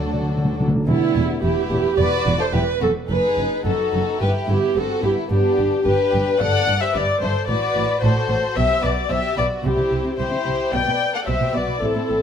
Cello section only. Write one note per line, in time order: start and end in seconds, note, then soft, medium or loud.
0.00 0.63 D2 medium
0.87 0.95 E2 medium
1.16 1.24 E2 medium
1.43 1.51 E2 medium
1.71 1.79 E2 medium
1.99 2.07 E2 medium
2.27 2.35 E2 medium
2.54 2.62 E2 medium
2.82 2.90 E2 medium
3.10 3.18 F#2 medium
3.38 3.46 F#2 medium
3.66 3.74 F#2 medium
3.94 4.02 F#2 medium
4.21 4.29 G2 medium
4.48 4.56 G2 medium
4.76 4.84 G2 medium
5.03 5.11 G2 medium
5.30 5.38 G2 medium
5.58 5.66 G2 medium
5.85 5.93 G2 medium
6.13 6.21 G2 medium
6.40 6.48 G2 medium
6.67 6.75 G2 medium
6.94 7.02 G2 medium
7.21 7.29 G2 medium
7.49 7.57 A2 medium
7.75 7.83 A2 medium
8.02 8.10 A2 medium
8.29 8.37 A2 medium
8.56 8.64 B2 medium
8.83 8.91 B2 medium
9.10 9.18 B2 medium
9.37 9.45 B2 medium
9.64 9.70 C3 medium
9.78 9.83 C3 soft
9.92 9.97 C3 soft
10.05 10.10 C3 soft
10.18 10.24 C3 medium
10.32 10.37 C3 soft
10.45 10.51 C3 medium
10.72 10.78 B2 medium
10.87 10.92 B2 medium
11.27 11.32 B2 medium
11.41 11.46 B2 soft
11.54 11.60 B2 soft
11.68 11.74 B2 soft
11.82 11.88 A2 medium
11.96 12.01 A2 soft
12.09 12.15 A2 soft